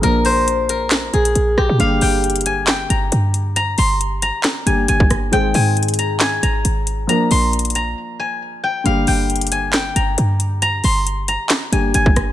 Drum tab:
HH |x---o---x---x---x---x-x-x-------|x---o---xxxxx---x---x---x---x---|x---o---x---x---x---x---x---x---|x---o---xxxxx---x---x---x---x---|
CP |----------------x---------------|----------------x---------------|----------------x---------------|----------------x---------------|
SD |----------------o-----------r---|----------------o---------------|----------------o-----------r---|----------------o---------------|
BD |--------------------------------|--------------------------------|--------------------------o-----|--------------------------------|

HH |x---o---xxxxx-------------------|x---o---xxxxx---x---x---x---x---|x---o---x---x---x---x---x---x---|
CP |--------------------------------|----------------x---------------|----------------x---------------|
SD |--------------------------------|----------------o---------------|----------------o-----------r---|
BD |--------------------------------|--------------------------------|--------------------------o-----|